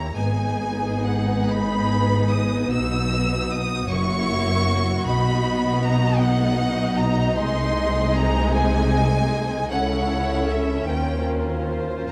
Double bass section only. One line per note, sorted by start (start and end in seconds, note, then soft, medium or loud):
0.00 0.16 D#2 medium
0.16 2.66 G#1 medium
2.70 3.89 B1 medium
3.89 5.04 F#1 medium
5.07 7.33 B1 medium
7.36 9.70 C2 loud
9.71 10.85 C#2 medium
10.88 12.06 D#2 medium